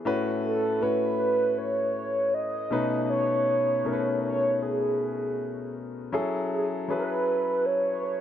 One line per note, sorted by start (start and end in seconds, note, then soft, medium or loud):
0.05 0.56 A2 medium
0.05 0.56 A3 medium
0.05 0.56 C#4 medium
0.05 0.57 F#4 medium
0.05 0.57 B4 loud
0.44 0.84 A4 medium
0.81 1.82 A2 medium
0.81 1.82 A3 medium
0.81 1.82 C#4 medium
0.81 1.82 F#4 medium
0.81 1.60 B4 medium
0.81 1.82 C#5 medium
1.58 2.36 C#5 loud
2.34 3.09 D#5 loud
2.71 3.64 B2 medium
2.71 3.64 A3 medium
2.71 3.65 C#4 medium
2.71 3.65 D#4 medium
2.71 3.65 B4 medium
3.10 4.19 C#5 loud
3.84 4.85 B2 medium
3.84 4.86 A3 medium
3.84 4.86 C#4 medium
3.84 4.86 D#4 medium
3.84 3.93 A#4 medium
3.93 4.90 B4 medium
4.24 4.64 C#5 loud
4.62 5.75 G#4 medium
6.13 6.63 F#3 medium
6.13 6.64 C#4 medium
6.13 6.64 E4 medium
6.13 6.64 G#4 medium
6.13 6.64 A4 medium
6.52 6.66 G#4 medium
6.88 7.89 F#3 medium
6.88 7.89 C#4 medium
6.88 7.90 E4 medium
6.88 7.90 G#4 medium
6.88 7.67 B4 loud
6.88 7.90 B4 medium
7.66 8.21 C#5 loud